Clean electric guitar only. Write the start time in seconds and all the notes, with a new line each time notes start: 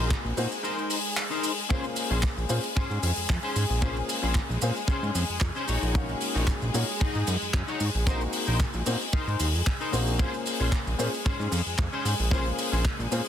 Already playing: D#4 A#4
0.00 C5
0.24 muted clean electric guitar stroke
0.63 D#4 A#4 C5
1.30 D#4 A#4 C5
1.69 C#4 G#4 C5
1.96 muted clean electric guitar stroke
2.10 C#4 G#4 C5
2.37 muted clean electric guitar stroke
2.75 C#4 G#4 C5
3.43 C#4 G#4 C5
3.81 C#4 G#4 C5
4.08 muted clean electric guitar stroke
4.22 C#4 G#4 C5
4.49 muted clean electric guitar stroke
4.88 C#4 G#4 C5
5.55 C#4 G#4 C5
5.67 D#4 F#4 C#5
6.21 muted clean electric guitar stroke
6.34 D#4 F#4 C#5
6.61 muted clean electric guitar stroke
7.00 D#4 F#4 G#4
7.67 D#4 F#4 C#5
8.06 D#4 A#4 C5
8.33 muted clean electric guitar stroke
8.47 D#4 A#4 C5
8.74 muted clean electric guitar stroke
9.13 D#4 A#4 C5
9.80 D#4 A#4 C5
10.19 C#4 G#4 C5
10.46 muted clean electric guitar stroke
10.60 C#4 G#4 C5
10.86 muted clean electric guitar stroke
11.25 C#4 G#4 C5
11.92 C#4 G#4 C5
12.31 C#4 G#4 C5
12.58 muted clean electric guitar stroke
12.72 C#4 G#4 C5
12.98 muted clean electric guitar stroke